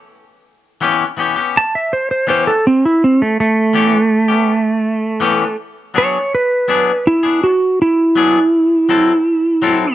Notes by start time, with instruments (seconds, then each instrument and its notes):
0.81 clean electric guitar E3 B3 C#4 G4
1.17 clean electric guitar E3 B3 C#4 G4
1.36 clean electric guitar B3 C#4 G4
1.57 electric slide guitar A5
1.75 electric slide guitar E5
1.93 electric slide guitar C5
2.11 electric slide guitar C5
2.27 clean electric guitar E3 B3 C#4 G4, electric slide guitar C5
2.47 electric slide guitar A4
2.67 electric slide guitar C4
2.85 electric slide guitar E4
3.04 electric slide guitar C4
3.22 electric slide guitar A3
3.40 electric slide guitar A3
3.73 clean electric guitar E3 B3 C#4 G4
4.28 clean electric guitar B3 C#4 G4
5.20 clean electric guitar E3 B3 C#4 G4
5.94 clean electric guitar F#3 B3 D4 G#4, electric slide guitar C#5
6.35 electric slide guitar B4
6.68 clean electric guitar F#3 B3 D4 G#4
7.07 electric slide guitar E4
7.23 clean electric guitar B3 D4 G#4
7.44 electric slide guitar F#4
7.82 electric slide guitar E4
8.16 clean electric guitar F#3 B3 D4 G#4
8.89 clean electric guitar F#3 C4 E4 A4
9.62 clean electric guitar F#3 C4 E4 A4